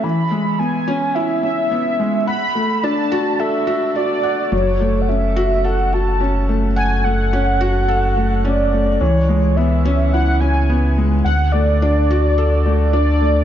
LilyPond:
<<
  \new Staff \with { instrumentName = "Soft synth lead" } { \time 4/4 \key fis \minor \tempo 4 = 107 b''4 gis''4 e''8 e''4. | b''4 a''4 e''4 d''4 | cis''8.~ cis''32 fis''32 e''4 fis''8 a''4 r8 | gis''8 fis''2~ fis''8 d''4 |
cis''4 e''4 fis''8 gis''4 r8 | fis''8 d''2~ d''8 d''4 | }
  \new Staff \with { instrumentName = "Felt piano" } { \time 4/4 \key fis \minor e8 gis8 b8 cis'8 e'8 cis'8 b8 gis8 | fis''8 a8 d'8 fis'8 a'8 fis'8 fis'8 fis''8 | fis8 a8 cis'8 fis'8 a'8 fis'8 cis'8 a8 | fis''8 a8 cis'8 fis'8 a'8 a8 cis'8 a8 |
e8 gis8 b8 cis'8 e'8 cis'8 b8 gis8 | fis''8 a8 d'8 fis'8 a'8 a8 d'8 a8 | }
  \new Staff \with { instrumentName = "Analog synth bass" } { \clef bass \time 4/4 \key fis \minor r1 | r1 | fis,,1~ | fis,,1 |
cis,1 | d,1 | }
>>